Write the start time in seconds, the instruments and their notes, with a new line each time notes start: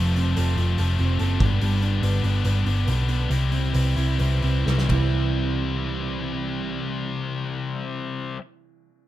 Already playing: picked electric bass F1, distorted electric guitar F2 C3 F3 A3 C4
0.16 distorted electric guitar F3 A3 C4, open hi-hat
0.36 picked electric bass F1, distorted electric guitar F2 C3 F3 A3 C4, clean electric guitar A4, open hi-hat
0.57 picked electric bass F1, distorted electric guitar A3 C4, clean electric guitar F4, open hi-hat
0.62 distorted electric guitar F3
0.78 picked electric bass F1, distorted electric guitar C3 F3 A3 C4, clean electric guitar A4, open hi-hat
0.99 picked electric bass F1, distorted electric guitar F2 C3 F3 A3 C4, open hi-hat
1.19 picked electric bass F#1, distorted electric guitar C3 F3 A3 C4, clean electric guitar A4, open hi-hat
1.40 picked electric bass G1, distorted electric guitar G2 D3 G3 B3 D4, kick, open hi-hat
1.61 picked electric bass G1, distorted electric guitar G2 D3 G3 B3 D4, open hi-hat
1.82 distorted electric guitar G3 B3 D4, open hi-hat
2.02 picked electric bass G1, distorted electric guitar G2 D3 G3 B3 D4, clean electric guitar B4, open hi-hat
2.23 picked electric bass G1, distorted electric guitar G3 B3 D4, open hi-hat
2.45 picked electric bass G1, distorted electric guitar D3 G3 B3, clean electric guitar B4, open hi-hat
2.49 distorted electric guitar D4
2.66 picked electric bass G1, distorted electric guitar G2 D3 G3 B3 D4, open hi-hat
2.87 picked electric bass B1, distorted electric guitar D3 G3 B3 D4, clean electric guitar B4, open hi-hat
3.08 distorted electric guitar G3 B3 D4, open hi-hat
3.30 picked electric bass C2, distorted electric guitar C3 G3 C4 E4, open hi-hat
3.52 distorted electric guitar G3 C4 E4, open hi-hat
3.73 picked electric bass C2, distorted electric guitar C3 G3 C4 E4, clean electric guitar B4, open hi-hat
3.96 picked electric bass C2, distorted electric guitar G3 C4 E4, open hi-hat
4.19 picked electric bass C2, distorted electric guitar C3 G3 C4 E4, clean electric guitar B4, open hi-hat
4.41 picked electric bass C2, distorted electric guitar C3 G3 C4 E4, open hi-hat
4.64 picked electric bass C2, distorted electric guitar C3 G3 C4 E4, clean electric guitar B4, snare
4.78 snare
4.87 picked electric bass C2, distorted electric guitar C3 G3 C4 E4, clean electric guitar E3, kick, ride
4.93 clean electric guitar B4